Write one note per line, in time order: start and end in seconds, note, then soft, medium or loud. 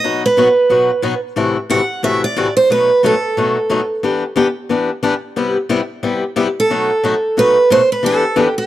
0.00 0.23 B2 medium
0.00 0.22 D#5 medium
0.04 0.23 F#3 medium
0.04 0.23 B3 medium
0.04 0.23 D#4 medium
0.04 0.24 F#4 medium
0.26 1.20 B4 medium
0.37 0.47 B2 medium
0.37 0.47 F#3 medium
0.37 0.48 B3 medium
0.37 0.47 D#4 medium
0.37 0.48 F#4 medium
0.70 0.89 B2 medium
0.70 0.89 F#3 medium
0.70 0.89 B3 medium
0.70 0.90 D#4 medium
0.70 0.90 F#4 medium
1.02 1.13 B2 medium
1.02 1.13 F#3 medium
1.02 1.13 B3 medium
1.02 1.13 D#4 medium
1.02 1.13 F#4 medium
1.36 1.56 A2 medium
1.36 1.56 C3 medium
1.36 1.56 E3 medium
1.36 1.56 A3 medium
1.36 1.56 E4 medium
1.36 1.56 F#4 medium
1.70 1.80 A2 medium
1.70 1.80 C3 medium
1.70 1.80 E3 medium
1.70 1.80 A3 medium
1.70 1.80 E4 medium
1.70 1.80 F#4 medium
1.70 2.04 F#5 medium
2.03 2.22 A2 medium
2.03 2.23 C3 medium
2.03 2.22 E3 medium
2.03 2.23 A3 medium
2.03 2.23 E4 medium
2.03 2.23 F#4 medium
2.03 2.21 E5 medium
2.24 2.54 D5 medium
2.36 2.47 A2 medium
2.36 2.46 C3 medium
2.36 2.47 E3 medium
2.36 2.47 A3 medium
2.36 2.47 E4 medium
2.36 2.47 F#4 medium
2.57 2.69 C5 medium
2.70 2.89 B2 medium
2.70 2.89 F#3 medium
2.70 2.90 A3 medium
2.70 2.89 D#4 medium
2.70 2.90 F#4 medium
2.70 3.01 B4 medium
3.03 3.13 B2 medium
3.03 3.13 F#3 medium
3.03 3.14 A3 medium
3.03 3.14 D#4 medium
3.03 3.14 F#4 medium
3.03 3.86 A4 medium
3.37 3.56 B2 medium
3.37 3.56 F#3 medium
3.37 3.57 A3 medium
3.37 3.57 D#4 medium
3.37 3.57 F#4 medium
3.69 3.80 B2 medium
3.69 3.80 F#3 medium
3.69 3.80 A3 medium
3.69 3.80 D#4 medium
3.69 3.80 F#4 medium
4.03 4.22 E3 medium
4.03 4.22 B3 medium
4.03 4.23 D4 medium
4.03 4.23 G4 medium
4.36 4.46 E3 medium
4.36 4.47 B3 medium
4.36 4.46 D4 medium
4.36 4.47 G4 medium
4.69 4.89 E3 medium
4.69 4.89 B3 medium
4.69 4.90 D4 medium
4.69 4.90 G4 medium
5.03 5.13 E3 medium
5.03 5.13 B3 medium
5.03 5.13 D4 medium
5.03 5.14 G4 medium
5.36 5.56 C3 medium
5.36 5.56 G3 medium
5.36 5.56 B3 medium
5.36 5.56 E4 medium
5.36 5.56 G4 medium
5.69 5.80 C3 medium
5.69 5.80 G3 medium
5.69 5.80 B3 medium
5.69 5.80 E4 medium
5.69 5.81 G4 medium
6.03 6.23 C3 medium
6.03 6.23 G3 medium
6.03 6.23 B3 medium
6.03 6.23 E4 medium
6.03 6.23 G4 medium
6.36 6.47 C3 medium
6.36 6.46 G3 medium
6.36 6.47 B3 medium
6.36 6.47 E4 medium
6.36 6.47 G4 loud
6.60 7.39 A4 medium
6.70 6.90 B2 medium
6.70 6.90 F#3 medium
6.70 6.90 A3 medium
6.70 6.90 D#4 medium
6.70 6.90 F#4 medium
7.03 7.14 B2 medium
7.03 7.14 F#3 medium
7.03 7.14 A3 medium
7.03 7.14 D#4 medium
7.03 7.14 F#4 medium
7.37 7.56 B2 medium
7.37 7.57 F#3 medium
7.37 7.57 A3 medium
7.37 7.57 D#4 medium
7.37 7.57 F#4 medium
7.37 7.69 B4 medium
7.70 7.81 B2 medium
7.70 7.81 F#3 medium
7.70 7.81 A3 medium
7.70 7.81 D#4 medium
7.70 7.81 F#4 medium
7.70 7.89 C5 loud
7.92 8.05 B4 medium
8.03 8.23 E3 medium
8.03 8.23 B3 medium
8.03 8.23 D4 medium
8.03 8.24 G4 medium
8.03 8.54 A4 loud
8.36 8.47 E3 medium
8.36 8.47 B3 medium
8.36 8.47 D4 medium
8.36 8.47 G4 medium
8.58 8.66 G4 medium